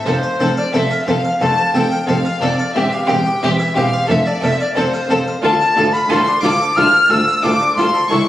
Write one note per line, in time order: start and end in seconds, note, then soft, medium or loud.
0.06 0.15 F1 medium
0.06 0.37 F2 medium
0.06 0.15 F2 medium
0.06 0.15 C4 medium
0.06 0.15 A4 medium
0.06 0.57 C5 loud
0.06 0.57 C5 medium
0.23 0.41 C5 medium
0.40 0.48 F1 medium
0.40 0.71 F2 medium
0.40 0.49 F2 medium
0.40 0.49 C4 medium
0.40 0.48 A4 medium
0.40 0.58 A4 medium
0.57 0.74 D5 medium
0.57 0.64 D5 medium
0.57 0.75 F5 medium
0.73 0.82 F1 medium
0.73 1.05 F2 medium
0.73 0.82 F2 medium
0.73 0.82 C4 medium
0.73 0.81 A4 medium
0.73 0.92 C5 medium
0.73 1.07 E5 loud
0.73 1.07 E5 medium
0.91 1.09 F4 medium
1.07 1.15 F1 medium
1.07 1.38 F2 medium
1.07 1.16 F2 medium
1.07 1.15 C4 medium
1.07 1.16 A4 medium
1.07 1.26 C5 medium
1.07 1.41 F5 loud
1.07 1.43 F5 medium
1.25 1.42 F5 medium
1.41 1.49 F1 medium
1.41 1.72 F2 medium
1.41 1.50 F2 loud
1.41 1.59 A3 medium
1.41 1.49 C4 medium
1.41 1.49 A4 medium
1.41 1.74 A5 loud
1.41 1.76 A5 loud
1.58 1.76 C5 medium
1.74 1.83 F1 medium
1.74 1.83 F2 medium
1.74 2.05 F2 medium
1.74 1.83 C4 medium
1.74 1.93 A4 medium
1.74 1.83 A4 medium
1.74 2.10 G5 medium
1.74 2.09 G5 loud
1.92 2.09 F5 medium
2.08 2.16 F1 medium
2.08 2.16 F2 medium
2.08 2.39 F2 medium
2.08 2.16 C4 medium
2.08 2.16 A4 medium
2.08 2.26 C5 medium
2.08 2.41 F5 medium
2.08 2.42 F5 loud
2.25 2.43 F4 medium
2.41 2.50 F1 medium
2.41 2.50 F2 medium
2.41 2.72 F2 medium
2.41 2.49 C4 medium
2.41 2.49 A4 medium
2.41 2.60 C5 medium
2.41 2.75 D5 medium
2.41 2.76 D5 loud
2.59 2.76 F5 medium
2.75 2.83 E1 medium
2.75 2.83 E2 medium
2.75 3.06 E2 medium
2.75 2.84 C4 medium
2.75 2.83 G4 medium
2.75 2.95 E5 medium
2.75 2.92 E5 loud
2.93 3.10 G4 medium
2.93 3.12 F5 loud
2.93 3.10 F5 medium
3.09 3.17 E1 medium
3.09 3.17 E2 medium
3.09 3.39 E2 medium
3.09 3.17 C4 medium
3.09 3.17 G4 medium
3.09 3.27 C5 medium
3.09 3.43 G5 loud
3.09 3.42 G5 loud
3.26 3.43 G4 medium
3.42 3.51 E1 medium
3.42 3.50 E2 medium
3.42 3.73 E2 medium
3.42 3.50 C4 medium
3.42 3.50 G4 medium
3.42 3.78 E5 medium
3.42 3.76 E5 loud
3.60 3.77 E4 medium
3.76 3.84 E1 medium
3.76 3.84 E2 medium
3.76 4.06 E2 medium
3.76 3.84 C4 medium
3.76 3.84 G4 medium
3.76 3.94 G4 medium
3.76 4.09 F5 loud
3.76 4.09 F5 medium
3.93 4.10 C5 medium
4.09 4.18 F1 medium
4.09 4.18 F2 loud
4.09 4.40 F2 medium
4.09 4.18 C4 medium
4.09 4.17 A4 medium
4.09 4.26 E5 loud
4.26 4.44 A4 medium
4.26 4.32 D5 medium
4.26 4.44 D5 loud
4.43 4.51 F1 medium
4.43 4.51 F2 medium
4.43 4.73 F2 medium
4.43 4.51 C4 medium
4.43 4.61 F4 medium
4.43 4.51 A4 medium
4.43 4.59 E5 loud
4.43 4.60 E5 loud
4.60 4.78 D5 loud
4.60 4.67 D5 loud
4.60 4.78 F5 medium
4.76 4.85 F1 medium
4.76 4.84 F2 medium
4.76 5.07 F2 medium
4.76 4.84 C4 medium
4.76 4.85 A4 medium
4.76 4.94 A4 medium
4.76 5.42 C5 loud
4.76 5.20 C5 medium
4.94 5.11 F4 medium
5.09 5.18 F1 medium
5.09 5.18 F2 medium
5.09 5.40 F2 medium
5.09 5.18 C4 medium
5.09 5.17 A4 medium
5.09 5.28 A4 medium
5.27 5.44 F5 medium
5.43 5.51 D2 medium
5.43 5.52 D2 medium
5.43 5.74 D2 medium
5.43 5.51 F4 medium
5.43 5.52 A4 medium
5.43 5.95 A5 loud
5.43 5.93 A5 loud
5.61 5.78 F4 medium
5.76 5.84 D2 medium
5.76 5.85 D2 medium
5.76 6.07 D2 medium
5.76 5.85 F4 medium
5.76 5.85 A4 medium
5.76 5.95 A4 medium
5.93 6.11 F4 medium
5.93 6.11 B5 loud
6.10 6.18 D2 medium
6.10 6.19 D2 medium
6.10 6.41 D2 medium
6.10 6.28 A3 medium
6.10 6.18 F4 medium
6.10 6.19 A4 medium
6.10 6.43 C6 loud
6.10 6.44 C6 loud
6.27 6.45 D4 medium
6.43 6.51 D2 medium
6.43 6.74 D2 medium
6.43 6.52 D2 medium
6.43 6.51 F4 medium
6.43 6.61 F4 medium
6.43 6.52 A4 medium
6.43 6.77 D6 loud
6.43 6.78 D6 loud
6.61 6.78 A4 medium
6.76 6.85 D2 medium
6.76 7.07 D2 medium
6.76 6.85 D2 medium
6.76 6.95 D4 medium
6.76 6.85 F4 medium
6.76 6.86 A4 medium
6.76 7.10 F6 loud
6.76 7.12 F6 loud
6.94 7.11 F4 medium
7.10 7.18 D2 medium
7.10 7.19 D2 medium
7.10 7.41 D2 medium
7.10 7.18 F4 medium
7.10 7.18 A4 medium
7.10 7.28 A4 medium
7.10 7.44 E6 loud
7.10 7.45 E6 loud
7.28 7.45 F4 medium
7.43 7.51 D2 medium
7.43 7.52 D2 loud
7.43 7.75 D2 medium
7.43 7.62 A3 medium
7.43 7.52 F4 medium
7.43 7.53 A4 medium
7.43 7.77 D6 loud
7.43 7.76 D6 loud
7.61 7.79 D4 medium
7.76 7.85 D2 medium
7.76 8.08 D2 medium
7.76 7.95 F4 medium
7.76 7.86 F4 medium
7.76 7.86 A4 medium
7.76 8.10 C6 loud
7.94 8.11 A4 medium
8.10 8.18 C#2 loud
8.10 8.19 C#2 medium
8.10 8.29 C#2 medium
8.10 8.19 E4 medium
8.10 8.19 A4 medium
8.10 8.28 C#6 loud
8.10 8.17 C#6 loud